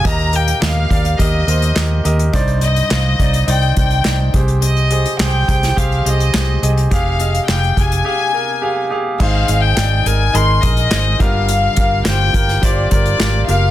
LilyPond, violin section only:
\new Staff \with { instrumentName = "Violin section" } { \time 4/4 \key aes \lydian \tempo 4 = 105 bes''8 g''8 f''4 ees''4. r8 | r8 ees''4. g''8 g''4 r8 | ees''4 g''4 f''8 ees''4 r8 | f''4 g''8 aes''2 r8 |
f''8. g''8. aes''8 c'''8 ees''4 f''8~ | f''4 g''4 d''8 d''4 f''8 | }